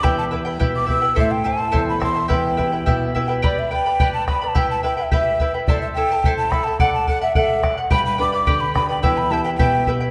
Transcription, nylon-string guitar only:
\new Staff \with { instrumentName = "Nylon-string guitar" } { \time 2/4 \key e \minor \tempo 4 = 107 e,8 <e' g' b'>8 b,8 <e' g' b'>8 | a,8 <e' a' c''>8 e,8 <e' a' c''>8 | e,8 <e' g' b'>8 b,8 <e' g' b'>8 | r2 |
r2 | r2 | r2 | g,8 <d' g' b'>8 d8 <d' g' b'>8 |
e,8 <e' g' b'>8 b,8 <e' g' b'>8 | }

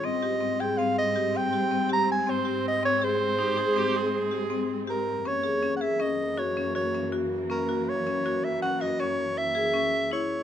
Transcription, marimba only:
\new Staff \with { instrumentName = "Marimba" } { \time 7/4 \key aes \major \tempo 4 = 161 c'8 g'8 c'8 aes'8 c'4 g'8 c'8 g'8 c'8 g'4 c'8 g'8~ | g'8 c'8 aes'4 ees'8 aes'8 c'4 r8 g'8 c'4 g'4 | des'8 aes'8 des'8 aes'8 des'4 ges'8 des'8 ges'8 des'8 ges'4 des'8 ges'8~ | ges'8 des'8 ges'4 des'8 ges'8 des'4 r8 aes'8 des'4 fes'4 | }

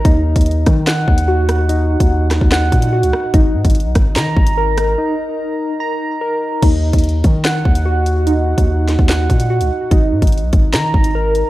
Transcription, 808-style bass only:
\new Staff \with { instrumentName = "808-style bass" } { \clef bass \time 4/4 \key ees \minor \tempo 4 = 146 ees,8. ees,8. ees4 ees,4.~ | ees,8. ees,4 ees,8. bes,8. des,16 r8 | aes,,8 aes,16 aes,,8 ces,16 aes,,8 ees8 aes,,4. | r1 |
ees,8. ees,8. ees4 ees,4.~ | ees,8. ees,4 ees,8. bes,8. des,16 r8 | aes,,8 aes,16 aes,,8 ces,16 aes,,8 ees8 aes,,4~ aes,,16 r16 | }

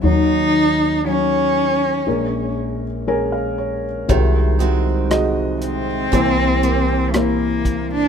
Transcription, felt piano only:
<<
  \new Staff \with { instrumentName = "Felt piano" } { \time 4/4 \key bes \minor \tempo 4 = 59 << { r2. aes''16 f''16 des''8 | r1 | } \\ { <ges ees' des''>8. r16 <ges ees' des''>8. r16 <aes des' bes'>8. r16 <aes des' bes'>8. r16 | <aes ges' c''>8. r16 <aes ges' ees''>8. r16 <bes e' c''>8. r16 <bes e' c''>8. r16 | } >> }
  \new Staff \with { instrumentName = "Felt piano" } { \clef bass \time 4/4 \key bes \minor <ees, ees>2 <bes,, bes,>2 | <c, c>2 <c, c>2 | }
>>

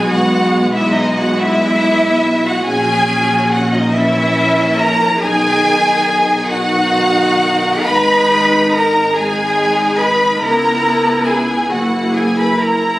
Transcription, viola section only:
\new Staff \with { instrumentName = "Viola section" } { \time 6/8 \key b \major \tempo 4. = 46 << { b4. b4. | cis'4. cis'4. | dis'4. dis'4. | dis'4. dis'4. |
e'4. e'4. | } \\ { gis2. | fis4. e4. | dis4. dis4. | gis4. gis4. |
b4. ais4. | } >> }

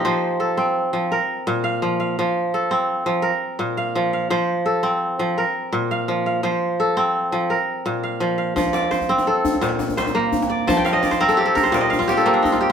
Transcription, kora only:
<<
  \new Staff \with { instrumentName = "Kora" } { \time 12/8 \key f \mixolydian \tempo 4. = 113 << { c''4 a'4. r8 bes'4. f''4 f''8~ | f''8 r8 a'4. r8 bes'4. f''4 f''8 | c''4 a'4. r8 bes'4. f''4 f''8 | c''4 a'4. r8 bes'4. f''4 f''8~ |
f''8 d''8 c''4 a'4. r8 c''4. d''8~ | d''8 r1 r4. | } \\ { ees'16 r1 r4. r16 | r1. | r1. | r1. |
r1. | a''16 g''16 f''16 ees''16 d''16 c''16 bes'16 a'16 g'16 a'16 bes'16 c''16 d''16 ees''16 f''16 f'16 g'16 a'16 c'16 d'16 ees'16 f'16 g'8 | } >> }
  \new Staff \with { instrumentName = "Kora" } { \clef bass \time 12/8 \key f \mixolydian f4 r8 c'4 f8 r4 bes,4 f4 | f4 r8 c'4 f8 r4 bes,4 f4 | f4 r8 c'4 f8 r4 bes,4 f4 | f4 r8 c'4 f8 r4 bes,4 f4 |
f4 r8 c'4 r8 bes,4 r8 bes4 r8 | f4 r8 c'4 r8 bes,4 r8 bes4 r8 | }
>>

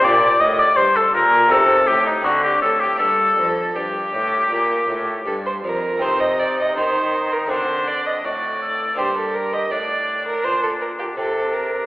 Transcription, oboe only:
\new Staff \with { instrumentName = "Oboe" } { \time 4/4 \key g \minor \tempo 4 = 81 d''8 ees''16 d''16 c''16 a'16 bes'8 a'8 g'16 ees'16 fis'16 g'16 a'16 g'16 | a'8. r16 g'2~ g'8 r8 | ees'2 d'4 fis'8 a'8 | g'4 d'2 d'4 | }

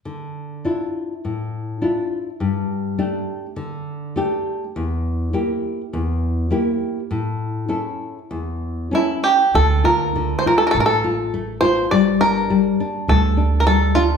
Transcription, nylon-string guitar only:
\new Staff \with { instrumentName = "Nylon-string guitar" } { \time 4/4 \key d \minor \tempo 4 = 102 d4 <d' e' f'>4 a,4 <d' e' f'>4 | g,4 <a d' g'>4 d4 <a d' g'>4 | e,4 <bes e' g'>4 e,4 <bes e' g'>4 | a,4 <cis' e' a'>4 e,4 <cis' e' a'>4 |
d8 f'8 d8 f'8 a8 f'8 a8 f'8 | g8 d'8 g8 d'8 g8 d'8 g8 d'8 | }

